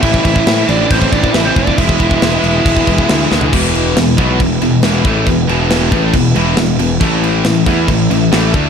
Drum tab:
CC |x-x-x-x-x-x-x-x-|x-x-x-x-x-x-x---|x-x-x-x-x-x-x-x-|x-x-x-x-x-x-x-x-|
SD |----o-------o---|----o-------o-o-|----o-------o---|----o-------o---|
FT |----------------|---------------o|----------------|----------------|
BD |oooo----oooo--oo|oooo----oooo----|o-----o-o-----o-|o-----o-o-------|

CC |x-x-x-x-x-x-x-x-|
SD |----o-------o---|
FT |----------------|
BD |o-----o-o-----o-|